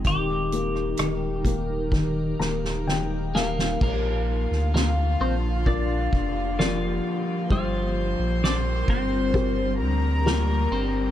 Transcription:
Already playing: D#4
0.04 D#1 D#3 G4 A#4, kick, closed hi-hat
0.52 A#3, closed hi-hat
0.76 cross-stick
0.97 D#1 D#3, cross-stick, closed hi-hat
1.45 A#3, kick, closed hi-hat
1.92 D#3, kick, snare
2.39 D#1 A#3 A#5, snare
2.64 snare
2.87 D#3 G5, snare
3.35 A#3 A#4 F5, snare
3.59 snare
3.81 A#1 A#3 D4 F4 A#4 F5, kick, crash
4.29 ride
4.51 D2, snare
4.74 A#3 A#4, snare, ride
5.20 A#1 C4 C5, ride
5.66 D4 F4 G4 A#4 D5, kick
6.13 F1, kick, ride
6.58 F3 F4 A#4 D5, snare, ride
7.05 ride
7.50 G1 F3 G3 D4 F4 A#4 C5 C6, kick, ride
7.97 ride
8.19 A#1
8.42 D4 D5, snare, ride
8.88 G1 C4 C5, kick, ride
9.34 F4 G4 A#4, kick, ride
9.80 D2 A#4 A#5, ride
10.25 A#3 F4 G4 A#4, snare, ride
10.71 G1 C4 C5, ride

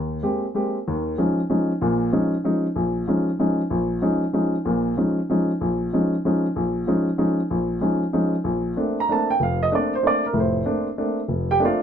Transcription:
Already playing: D#2
0.23 G#3 A#3 C4 G4
0.55 G#3 A#3 C4 G4
0.87 D#2 D#3
1.18 F3 G#3 C#4 D#4
1.50 F3 G#3 C#4 D#4
1.81 A#1 A#2
2.12 F3 G#3 C#4 D#4
2.44 F3 G#3 C#4 D#4
2.76 A#1
3.07 F3 G#3 C#4 D#4
3.39 F3 G#3 C#4 D#4
3.70 A#1
4.02 F3 G#3 C#4 D#4
4.33 F3 G#3 C#4 D#4
4.65 A#1 A#2
4.97 F3 G#3 C#4 D#4
5.30 F3 G#3 C#4 D#4
5.61 A#1
5.93 F3 G#3 C#4 D#4
6.25 F3 G#3 C#4 D#4
6.56 A#1
6.87 F3 G#3 C#4 D#4
7.18 F3 G#3 C#4 D#4
7.50 A#1
7.81 F3 G#3 C#4 D#4
8.13 F3 G#3 C#4 D#4
8.44 A#1
8.76 A3 A#3 C4 D4
9.00 A#5
9.08 A3 A#3 C4 D4 A5
9.30 G5
9.40 F1 F5
9.63 D#5
9.71 A3 A#3 C4 D4 D5
9.95 C5
10.03 A3 A#3 C4 D4
10.07 D5
10.26 A#4
10.33 F1 A2
10.40 C5
10.65 A3 A#3 C4 D4
10.98 A3 A#3 C4 D4
11.28 F1
11.51 G4 G5
11.59 A3 A#3 C4 D4
11.65 F4 C5 D5 F5

